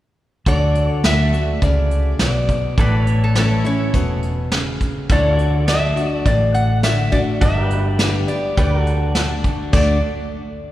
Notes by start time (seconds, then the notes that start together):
0.46 D2 D3 F#4 A4 D5, kick, closed hi-hat
0.75 closed hi-hat
0.86 C#5
1.04 D2 D3 A3 D4 F#4 E5, snare, closed hi-hat
1.33 D4 F#4, closed hi-hat
1.62 C#2 C#3 D5, kick, closed hi-hat
1.91 closed hi-hat
2.19 B1 B2 D5, snare, closed hi-hat
2.49 kick, closed hi-hat
2.77 A1 A2 E4 A4 B4 D5, kick, closed hi-hat
3.01 C#5
3.07 closed hi-hat
3.24 A4
3.35 E3 A3 C#4 E4 A4, snare, closed hi-hat
3.64 C#4 E4 C#5, closed hi-hat
3.94 E1 B2, kick, closed hi-hat
4.23 closed hi-hat
4.52 C#3, snare, closed hi-hat
4.81 kick, closed hi-hat
5.09 D2 D3 E4 A4 C#5 D5, kick, closed hi-hat
5.33 F#4 D5
5.39 closed hi-hat
5.68 D3 A3 D4 F#4 E5, snare, closed hi-hat
5.96 D4 F#4, closed hi-hat
6.15 D5
6.26 A1 A2 D5, kick, closed hi-hat
6.54 F#5, closed hi-hat
6.83 D3 A3 D4 F#4 E5, snare, closed hi-hat
7.12 D4 F#4 D5, kick, closed hi-hat
7.41 G1 G2 F#4 A4 D5 E5, kick, closed hi-hat
7.61 G4
7.67 B4, closed hi-hat
7.99 D3 G3 B3 G4, snare, closed hi-hat
8.28 B3 G4 D5, closed hi-hat
8.57 D2 D3 G4 B4 D5, kick, closed hi-hat
8.78 F#4
8.84 A4, closed hi-hat
9.15 D3 A3 D4 F#4, snare, closed hi-hat
9.44 kick, closed hi-hat
9.73 D2 D3 A3 D4 F#4 D5, kick, crash